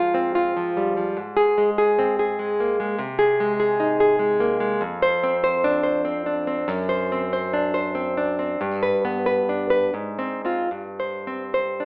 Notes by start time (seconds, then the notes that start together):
Already playing: G#2 F3 F4
0.14 C4
0.35 F4
0.57 F3
0.77 G3
0.97 F3
1.17 G#2
1.37 G#4
1.58 G#3
1.78 G#4
1.99 C4
2.19 G#4
2.39 G#3
2.60 A#3
2.80 G#3
2.99 C3
3.19 G#4
3.40 G#3
3.60 G#4
3.80 D#4
4.00 G#4
4.19 G#3
4.40 A#3
4.60 G#3
4.81 F2
5.02 C5
5.23 C4
5.44 C5
5.64 D4
5.83 C5
6.05 C4
6.26 D4
6.47 C4
6.68 F#2
6.89 C5
7.12 C4
7.33 C5
7.54 D4
7.74 C5
7.95 C4
8.17 D4
8.39 C4
8.61 G2
8.83 B4
9.05 B3
9.26 B4
9.49 D4
9.70 B4
9.94 G#2
10.19 C4
10.45 C4 F4
10.71 G2
11.00 C5
11.27 C4
11.54 C5
11.80 D4